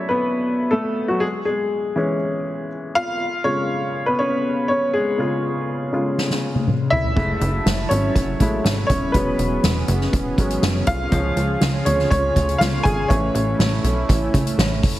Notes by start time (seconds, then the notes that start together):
Already playing: F#3 A3 C#4 E4 C#5 D5 E5
0.09 B3 B4
0.71 A3 A4
1.08 F#3 F#4
1.20 G#3 G#4
1.45 G#3 G#4
1.96 E3 G#3 C#4
2.95 F4 F5
3.44 C#3 G#3 C#4 F4 C#5
4.06 B3 B4
4.19 C#4 C#5
4.68 C#4 C#5
4.93 G#3 G#4
5.18 C#3 G#3 F4
5.93 C#3 G#3 F4
6.18 snare
6.30 snare
6.55 high tom
6.67 mid tom
6.90 E4 E5, floor tom
7.05 floor tom
7.16 F#1 F#3 G#3 A3 C#4 E4 A5, kick, crash
7.41 F#1, closed hi-hat
7.66 F#1, snare, closed hi-hat
7.89 G#1 C#4 C#5, closed hi-hat
8.15 F#1, kick, closed hi-hat
8.40 A1 G#3 A3 E4, kick, closed hi-hat
8.65 G#1, snare, closed hi-hat
8.87 D#1 C#4 C#5, kick, closed hi-hat
9.12 E1 E3 F#3 G#3 B3 C#4 G#4 B4, kick, closed hi-hat
9.38 E1, closed hi-hat
9.63 E1, snare, closed hi-hat
9.88 F#1, closed hi-hat
10.01 snare
10.13 E1, kick, closed hi-hat
10.38 G#1 F#3 G#3 C#4, kick, closed hi-hat
10.50 closed hi-hat
10.62 F#1, snare, closed hi-hat
10.87 C2 F4 F5, kick, closed hi-hat
11.12 C#2 C#3 F3 G#3 C#4 F4, kick, closed hi-hat
11.36 C#2, closed hi-hat
11.61 C#2, snare, closed hi-hat
11.85 D2 C#4 C#5, closed hi-hat
11.99 snare
12.10 C#2 C#4 C#5, kick, closed hi-hat
12.36 D2, kick, closed hi-hat
12.49 closed hi-hat
12.58 C#2 F4 F5, snare, closed hi-hat
12.83 G#1 G#4 G#5, kick, closed hi-hat
13.08 A1 E3 A3 C#4 E4 C#5, kick, closed hi-hat
13.35 A1, closed hi-hat
13.59 A1, snare, closed hi-hat
13.84 B1, closed hi-hat
14.09 A1, kick, closed hi-hat
14.34 C#2, kick, closed hi-hat
14.47 closed hi-hat
14.58 A1, snare, closed hi-hat
14.83 F1, kick, open hi-hat
14.96 closed hi-hat